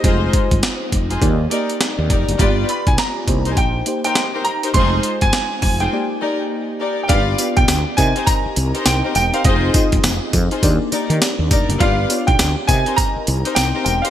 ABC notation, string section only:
X:1
M:4/4
L:1/16
Q:"Swing 16ths" 1/4=102
K:Cm
V:1 name="String section"
[EFAc]2 z4 z [EFAc] z2 [EGBd] z3 [EGBd] z | [FG=Bd]2 z4 z [EG_Bc] z3 [EGBc] z [EGBc] z [EGBc] | [EFAc]2 z4 z [EFAc] z2 [EGBd] z3 [EGBd] z | [FG=Bd]2 z4 z [EG_Bc] z3 [EGBc] z [EGBc] z [EGBc] |
[EFAc]2 z4 z [EFAc] z2 [EGBd] z3 [EGBd] z | [FG=Bd]2 z4 z [EG_Bc] z3 [EGBc] z [EGBc] z [EGBc] |]